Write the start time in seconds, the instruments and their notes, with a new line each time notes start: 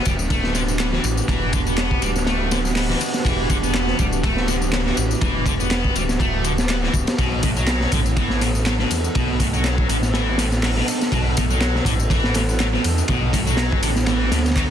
Already playing: ambient pad E3 B3 D4 F#4 G4
0.05 detuned saw bass D1, distorted electric guitar G3, kick, ride, tambourine
0.19 tambourine
0.30 distorted electric guitar A3, kick, ride, tambourine
0.44 snare
0.55 distorted electric guitar D3, snare, ride, tambourine
0.68 tambourine
0.79 distorted electric guitar B3, snare, clap, ride, tambourine
0.93 distorted electric guitar E3, snare
1.04 detuned saw bass A1, ride, tambourine
1.17 tambourine
1.28 detuned saw bass E1, distorted electric guitar E3, kick, ride, tambourine
1.53 distorted electric guitar D3, kick, ride, tambourine
1.67 distorted electric guitar B3, tambourine
1.78 snare, clap, ride, tambourine
1.91 kick
2.02 detuned saw bass D1, distorted electric guitar G3, ride, tambourine
2.16 snare, tambourine
2.26 distorted electric guitar A3, snare, ride, tambourine
2.51 distorted electric guitar D3, snare, ride, tambourine
2.65 snare, tambourine
2.76 distorted electric guitar B3, snare, clap, open hi-hat, tambourine
2.90 distorted electric guitar E3, snare
3.01 ride, tambourine
3.14 snare, tambourine
3.25 detuned saw bass E1, distorted electric guitar E3, kick, ride, tambourine
3.50 distorted electric guitar D3, kick, ride, tambourine
3.63 distorted electric guitar B3, tambourine
3.74 snare, clap, ride, tambourine
3.87 snare
3.99 detuned saw bass D1, distorted electric guitar G3, kick, ride, tambourine
4.13 tambourine
4.23 distorted electric guitar A3, kick, ride, tambourine
4.37 snare
4.48 distorted electric guitar D3, snare, ride, tambourine
4.62 tambourine
4.73 distorted electric guitar B3, snare, clap, ride, tambourine
4.86 distorted electric guitar E3, snare
4.97 detuned saw bass A1, ride, tambourine
5.11 tambourine
5.21 detuned saw bass E1, distorted electric guitar E3, kick, ride, tambourine
5.46 distorted electric guitar D3, kick, ride, tambourine
5.60 distorted electric guitar B3, tambourine
5.71 snare, clap, ride, tambourine
5.85 kick
5.96 detuned saw bass D1, distorted electric guitar G3, ride, tambourine
6.09 snare, tambourine
6.20 distorted electric guitar A3, kick, ride, tambourine
6.44 distorted electric guitar D3, ride, tambourine
6.58 snare, tambourine
6.69 distorted electric guitar B3, snare, clap, ride, tambourine
6.83 distorted electric guitar E3, snare
6.94 detuned saw bass D1, kick, ride, tambourine
7.07 snare, ride, tambourine
7.18 detuned saw bass B1, distorted electric guitar B2, ambient pad B3 D4 A4, kick, ride, tambourine
7.43 distorted electric guitar A2, kick, open hi-hat, ride, tambourine
7.57 distorted electric guitar F#3, tambourine
7.67 snare, clap, ride, tambourine
7.81 snare
7.92 detuned saw bass A1, distorted electric guitar D3, kick, open hi-hat, ride, tambourine
8.06 tambourine
8.17 distorted electric guitar E3, kick, ride, tambourine
8.30 snare
8.41 distorted electric guitar A2, snare, open hi-hat, ride, tambourine
8.55 tambourine
8.66 distorted electric guitar F#3, snare, clap, ride
8.79 distorted electric guitar B2, snare
8.91 detuned saw bass E2, open hi-hat, ride, tambourine
9.04 tambourine
9.15 detuned saw bass B1, distorted electric guitar B2, kick, ride, tambourine
9.40 distorted electric guitar A2, kick, open hi-hat, ride, tambourine
9.54 distorted electric guitar F#3, tambourine
9.64 snare, clap, ride, tambourine
9.78 kick
9.89 detuned saw bass A1, distorted electric guitar D3, open hi-hat, ride, tambourine
10.03 snare, tambourine
10.14 distorted electric guitar E3, snare, ride, tambourine
10.38 distorted electric guitar A2, snare, open hi-hat, ride, tambourine
10.52 snare, tambourine
10.63 distorted electric guitar F#3, snare, clap, open hi-hat, tambourine
10.77 distorted electric guitar B2, snare
10.88 open hi-hat, ride, tambourine
11.01 snare, tambourine
11.12 detuned saw bass B1, distorted electric guitar B2, kick, ride, tambourine
11.37 distorted electric guitar A2, kick, open hi-hat, ride, tambourine
11.51 distorted electric guitar F#3, tambourine
11.61 snare, clap, ride, tambourine
11.75 snare
11.85 detuned saw bass A1, distorted electric guitar D3, kick, open hi-hat, ride, tambourine
12.00 tambourine
12.10 distorted electric guitar E3, kick, ride, tambourine
12.24 snare
12.34 distorted electric guitar A2, snare, open hi-hat, ride, tambourine
12.49 tambourine
12.60 distorted electric guitar F#3, snare, clap, ride, tambourine
12.73 distorted electric guitar B2, snare
12.84 detuned saw bass E2, open hi-hat, ride, tambourine
12.98 tambourine
13.08 detuned saw bass B1, distorted electric guitar B2, kick, ride, tambourine
13.33 distorted electric guitar A2, kick, open hi-hat, ride, tambourine
13.47 distorted electric guitar F#3, tambourine
13.57 snare, clap, ride, tambourine
13.72 kick
13.83 detuned saw bass A1, distorted electric guitar D3, open hi-hat, ride, tambourine
13.96 snare, tambourine
14.06 distorted electric guitar E3, snare, ride, tambourine
14.32 detuned saw bass D2, distorted electric guitar A2, snare, open hi-hat, ride, tambourine
14.39 snare, ride
14.46 snare, ride, tambourine
14.51 snare, ride
14.56 distorted electric guitar F#3, kick, clap, ride, tambourine